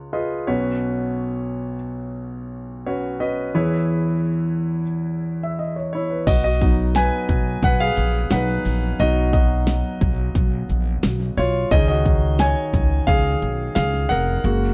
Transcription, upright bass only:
6.27 B1
7.29 B1
7.62 B1
7.97 A#1
8.31 B1
8.65 A#1
9.00 B1
10.01 B1
10.35 B1
10.69 A#1
11.04 B1
11.37 B1
11.71 C#2
12.73 C#2
13.07 C#2
13.42 B1
13.76 C#2
14.11 F1
14.44 F#1

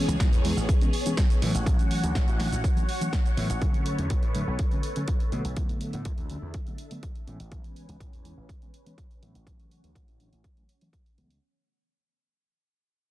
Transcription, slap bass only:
0.08 C#2
0.20 A1
0.32 E2
0.57 A1
1.42 A2
1.54 A1
1.66 A1
2.04 D2
2.15 A1
2.28 A1
2.52 A1
3.37 A2
3.50 A1
3.62 B1
3.99 E2
4.10 B1
4.23 A2
4.47 B1
5.32 B2
5.45 B1
5.57 E2
5.94 A2
6.05 E2
6.18 D2
6.42 E2
7.27 A2
7.40 A1
7.52 A1
7.89 C#2
8.00 A1
8.13 E2
8.37 A1
9.23 A2
9.35 A1
9.84 D2
9.95 A1
10.08 A1
10.33 A1
11.18 C#2

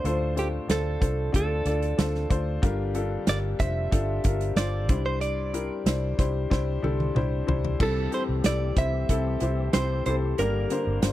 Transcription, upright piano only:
Already playing: D4 F4 A4 C5 D5
0.05 A2 D4 F4 A4 C5
0.36 D4 F4 A4 C5
0.68 D4 F4 A4 C5
1.01 D4 F4 A4 C5
1.32 D4 F4 A4 D5
1.66 D4 F4 A4 D5
1.98 D4 F4 A4 C5
2.30 D4 F4 A4 C5
2.62 G2 D3 D4 F4 G4 A#4
2.95 D4 F4 G4 A4
3.28 D4 F4 G4 A#4
3.59 D4 F4 G4 C5
3.91 D4 F4 G4 A4
4.24 D4 F4 G4 A#4
4.57 D4 F4 G4 C5
4.89 G2 D4 E4 G4 C5
5.53 D4 E4 G4 A#4
5.86 D4 E4 G4 C5
6.18 D4 E4 G4 C5
6.50 D4 E4 G4 C5
6.82 D4 E4 G4 A4
7.15 D4 E4 G4 C5
7.47 D4 E4 G4 C5
7.79 G2 C4 E4 G4 A4
8.11 C4 E4 G4 A4
8.44 C4 E4 G4 A4
8.76 C4 E4 G4 C5
9.09 C4 E4 G4 A4
9.41 C4 E4 G4 C5
9.74 C4 E4 G4 C5
10.06 C4 E4 G4 A4
10.39 G2 D3 A#3 D4 G4 A#4
10.70 A#3 D4 G4 C5
11.02 A#3 D4 G4 C5

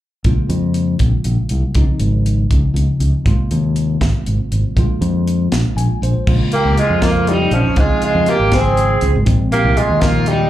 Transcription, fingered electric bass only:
0.25 A#1
0.37 muted fingered electric bass stroke
0.49 F2
1.00 A#1
1.25 A#1
1.51 C2
1.75 C#2
1.88 muted fingered electric bass stroke
2.00 G#1
2.51 C#2
2.74 C#2
3.00 C#2
3.26 G#1
3.39 muted fingered electric bass stroke
3.51 D#2
4.00 G#1
4.27 G#1
4.52 G#1
4.77 A#1
4.90 muted fingered electric bass stroke
5.01 F2
5.52 A#1
5.76 A#1
6.02 A#1
6.27 A#1
6.53 muted fingered electric bass stroke
6.65 C#2
6.90 F2
7.51 A#1
7.64 F2
7.77 C#2
8.02 muted fingered electric bass stroke
8.15 F2
8.39 G#1
9.02 C#2
9.16 G#1
9.27 G#1
9.53 muted fingered electric bass stroke
9.64 C2
9.90 D#2

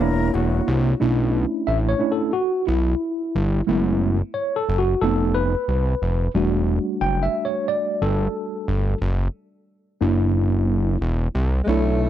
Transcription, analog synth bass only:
Already playing: E1
0.35 E1
0.68 C2
1.01 B1
1.68 A1
2.68 B1
3.35 G1
3.69 F#1
4.69 F#1
5.02 F1
5.68 C2
6.02 F1
6.35 E1
7.01 F#1
8.02 G1
8.68 G1
9.02 F#1
10.02 F#1
11.01 E1
11.35 C2
11.68 B1

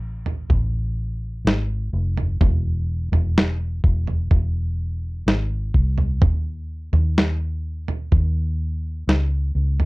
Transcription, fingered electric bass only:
Already playing: A1
0.50 A1
1.45 G#1
1.93 F1
2.41 E1
3.12 E1
3.84 E1
4.31 E1
5.26 G#1
5.74 C2
6.22 D#2
6.93 D#2
8.12 D#2
9.07 C#2
9.55 C#2

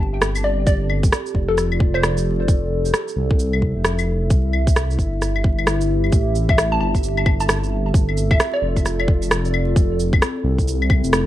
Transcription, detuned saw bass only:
Already playing: G1
0.67 G1
1.34 F1
2.48 F1
3.16 C2
3.76 F1
4.30 C2
4.98 G1
5.44 G1
6.12 A1
6.80 G1
7.94 G1
8.62 F1
9.76 F1
10.44 C2
11.04 F1

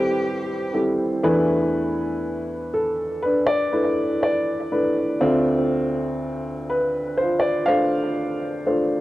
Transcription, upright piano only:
Already playing: A1 A2 G3 C4 E4 G4 A4 B4 C5
0.73 G3 C4 E4 A4
1.23 E2 E3 A3 D4 E4 B4
2.74 A4
3.22 D4 B4
3.47 D5
3.72 A3 D4 E4 B4
4.23 D5
4.72 A3 D4 E4 B4
5.20 D2 D3 A3 C4 D4 F4
6.70 B4
7.17 F4 C5
7.40 D5
7.66 A3 D4 F4 C5 F5
8.66 A3 D4 F4 C5

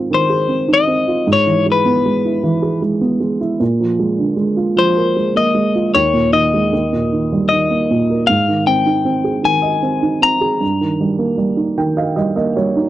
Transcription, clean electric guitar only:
0.14 C5
0.73 D#5
1.33 C#5
1.72 B4
4.79 C5
5.37 D#5
5.95 C#5
6.33 D#5
7.49 D#5
8.27 F5
8.67 G5
9.45 G#5
10.23 A#5

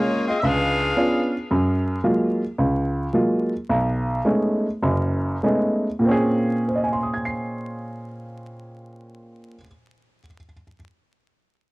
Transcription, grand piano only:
Already playing: G#3 A#3 C#4
0.43 C#2
0.96 B3 C#4 D4 F4
1.51 F#2
2.04 F#3 G#3 A#3 F4
2.58 C#2
3.13 F#3 G#3 A#3 F4
3.69 B1
4.25 G#3 A3 B3 C#4 D#4
4.82 F#1 F#2
5.43 G#3 A3 B3 C#4 D#4
5.99 A#2 A#3
6.05 C4 C#4
6.11 G#4
6.68 C5
6.75 D#5
6.84 G#5
6.93 C6
7.03 D#6
7.13 G#6
7.25 C7

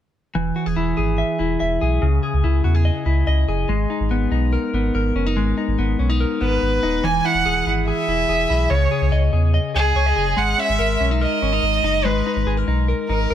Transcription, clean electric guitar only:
0.35 E3
0.56 F#4
0.66 G#4
0.77 E4
0.97 G#4
1.18 E5
1.39 E4
1.60 E5
1.81 G#4
2.02 C#3
2.23 G#4
2.44 E4
2.64 F#4
2.75 G#4
2.85 D#5
3.06 E4
3.27 D#5
3.48 G#4
3.69 G#3
3.90 D#4
4.11 B3
4.32 D#4
4.53 A#4
4.74 B3
4.95 A#4
5.16 C#4
5.26 D#4
5.37 G#3
5.58 D#4
5.79 B3
5.99 C#4
6.10 D#4
6.20 A#4
6.41 B3
6.83 D#4
7.04 E3
7.25 E4
7.46 G#4
7.67 E4
7.88 G#4
8.09 E4
8.29 G#4
8.50 E4
8.71 C#3
8.91 G#4
9.12 D#5
9.33 G#4
9.54 D#5
9.75 G#4
9.96 C#5
10.06 D#5
10.16 G#4
10.37 G#3
10.58 C#4
10.79 A#4
11.00 C#4
11.11 D#4
11.21 A#4
11.42 C#4
11.53 D#4
11.84 D#4
12.05 G#3
12.26 D#4
12.47 G#4
12.57 A#4
12.68 D#4
12.88 A#4
13.09 D#4
13.30 A#4

